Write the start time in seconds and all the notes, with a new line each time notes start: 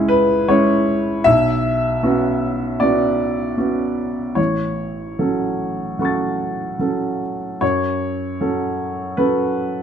Already playing: C#2 G#3 C#4 E4 G#4
0.08 B4
0.48 G#3 C#4 E4 C#5
1.24 B1 E5
2.03 B3 C#4 F#4
2.80 B3 C#4 F#4 D5
3.58 B3 C#4 F#4
4.35 A1 C#5
5.19 F#3 C#4 A4
5.99 F#3 C#4 A4 F#5 C#6
6.05 A6
6.79 F#3 C#4 A4
7.61 F#2 C#5
8.41 F#3 C#4 A4
9.17 F#3 C#4 A4 B4